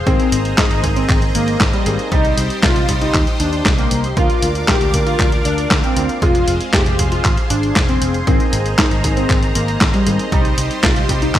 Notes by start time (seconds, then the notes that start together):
Already playing: G#4 C5
0.07 G#1 A#3 C4 D#4 G#4 D#5 A#5, kick, closed hi-hat
0.20 closed hi-hat
0.32 G#1, closed hi-hat
0.45 closed hi-hat
0.58 G#2 D#4, kick, snare, clap, closed hi-hat
0.71 G#1, closed hi-hat
0.84 G#1 A#3 C4 D#4 G#4, kick, closed hi-hat
0.96 C4, closed hi-hat
1.09 G#1, kick, clap, closed hi-hat
1.22 closed hi-hat
1.35 G#1 A#3, closed hi-hat
1.48 closed hi-hat
1.60 G#1, kick, snare, clap, closed hi-hat
1.73 G3, closed hi-hat
1.86 G#1 A#3 C4 D#4 G#4, closed hi-hat
1.99 closed hi-hat
2.12 C2 G3 C4 D#4 G4 D#5 C6, kick, closed hi-hat
2.25 closed hi-hat
2.37 C2, closed hi-hat
2.50 closed hi-hat
2.63 C2 F4, kick, snare, clap, closed hi-hat
2.76 C2, closed hi-hat
2.89 C2 G3 C4 D#4 G4, kick, closed hi-hat
3.01 D#4, closed hi-hat
3.14 D#2, kick, clap, closed hi-hat
3.27 closed hi-hat
3.40 D#2 D4, closed hi-hat
3.53 closed hi-hat
3.66 C2, kick, snare, clap, closed hi-hat
3.78 A#3, closed hi-hat
3.91 C2, closed hi-hat
4.04 closed hi-hat
4.17 D2 A#3 D4 F4 A#4 D5 F5 D6, kick, closed hi-hat
4.30 closed hi-hat
4.42 D2, closed hi-hat
4.55 closed hi-hat
4.68 A#1 G4, kick, snare, clap, closed hi-hat
4.81 D2, closed hi-hat
4.94 D2 A#3 D4 F4 A#4, kick, closed hi-hat
5.06 F4, closed hi-hat
5.19 D2, kick, clap, closed hi-hat
5.32 closed hi-hat
5.45 D2 D4, closed hi-hat
5.58 closed hi-hat
5.71 D2, kick, snare, clap, closed hi-hat
5.83 C4, closed hi-hat
5.96 D2 A#3 D4 F4 A#4, closed hi-hat
6.09 closed hi-hat
6.22 F1 G#3 C4 F4 G#4 C5 C6, kick, closed hi-hat
6.35 closed hi-hat
6.48 F1, closed hi-hat
6.61 closed hi-hat
6.73 F1 G4, kick, snare, clap, closed hi-hat
6.86 F1, closed hi-hat
6.99 F1 G#3 C4 F4 G#4, kick, closed hi-hat
7.12 F4, closed hi-hat
7.25 G#1, kick, clap, closed hi-hat
7.37 closed hi-hat
7.50 G#1 D4, closed hi-hat
7.63 closed hi-hat
7.76 F1, kick, snare, clap, closed hi-hat
7.89 C4, closed hi-hat
8.02 F1, closed hi-hat
8.14 closed hi-hat
8.27 G#1 A#3 C4 D#4 G#4 D#5 A#5, kick, closed hi-hat
8.40 closed hi-hat
8.53 G#1, closed hi-hat
8.66 closed hi-hat
8.78 G#2 D#4, kick, snare, clap, closed hi-hat
8.91 G#1, closed hi-hat
9.04 G#1 A#3 C4 D#4 G#4, kick, closed hi-hat
9.17 C4, closed hi-hat
9.30 G#1, kick, clap, closed hi-hat
9.43 closed hi-hat
9.55 G#1 A#3, closed hi-hat
9.68 closed hi-hat
9.81 G#1, kick, snare, clap, closed hi-hat
9.94 G3, closed hi-hat
10.07 G#1 A#3 C4 D#4 G#4, closed hi-hat
10.19 closed hi-hat
10.32 C2 G3 C4 D#4 G4 C6, kick, closed hi-hat
10.45 closed hi-hat
10.58 C2, closed hi-hat
10.71 closed hi-hat
10.83 C2 F4, kick, snare, clap, closed hi-hat
10.96 C2, closed hi-hat
11.09 C2 G3 C4 D#4 G4, kick, closed hi-hat
11.22 D#4, closed hi-hat
11.35 D#2, kick, clap, closed hi-hat